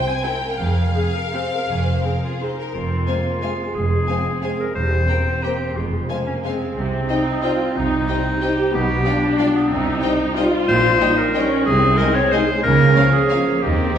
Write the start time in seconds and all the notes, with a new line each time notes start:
Already playing: C5
0.06 G#5
0.24 C4 E4 A#4 G5
0.57 F1 F2 G#4 F5
0.95 C4 G#4
1.16 A#4
1.33 C4 G#4 C5
1.52 A#4
1.68 F1 F2 G#4
1.85 C5
2.03 C4 G#4 A#4
2.22 F4 G#4
2.41 C4 D#4 G#4 C5
2.59 A#4
2.74 F1 F2 C4 F4
3.07 G#3 A#3 C4 C5 F5 G#5
3.41 G#3 C4 C5 F5 G#5
3.74 F1 F2 G#4
4.08 G#3 C4 C5 F5 G#5
4.42 G#3 C4 C5 F5 G#5
4.60 A#4
4.75 E1 E2 G3 C5
5.08 A#3 C4 C5 G5 A#5
5.43 A#3 C4 G4 C5 G5 A#5
5.76 F1 F2 G#3 F4
6.09 G#3 A#3 C4 C5 F5 G#5
6.26 C#4
6.44 G#3 C4 C5 F5 G#5
6.76 C2 C3 C4
7.08 G3 D#4 C5 D#5 G5
7.42 G3 D#4 F4 C5 D#5 G5
7.75 C2 C3 D#4
8.07 G3 C4 D#4 C5 D#5 G5
8.42 G3 D#4 G4 C5 D#5 G5
8.73 B1 B2 B3 G4
9.05 G3 D4 F4 D5 F5 G5
9.38 G3 D4 F4 D5 F5 G5
9.55 B3
9.69 C2 C3 C4 D#4
10.02 G3 D#4 C5 D#5 G5
10.36 G3 D#4 F4 C5 D#5 G5
10.68 A#1 A#2 C5
11.00 G3 D#4 C#5 D#5 G5
11.18 A#4
11.34 G3 C#4 D#4 C#5 D#5 G5
11.65 C2 C3 C4 G#4
11.97 G#3 D#4 A#4 D#5 G#5
12.15 C#5
12.31 G#3 D#4 C5 D#5 G#5
12.63 C#2 C#3 A#3 A#4
12.96 F3 C#4 C#5 F5
13.13 G#4
13.29 F3 A#3 C#4 C#5 F5
13.62 D#2 D#3 C4 G4